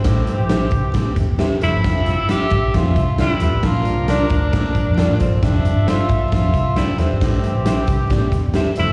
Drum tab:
HH |xxxxxxxx|xxxxxxxx|xxxxxxxx|xxxxxxxx|
SD |o-o-o-oo|o-o-o-o-|o-o-o-o-|o-o-o-oo|
BD |o--ooo--|o--ooo--|o--ooo-o|o--ooo--|

HH |xxxxxxxx|
SD |o-o-o-o-|
BD |o--ooo--|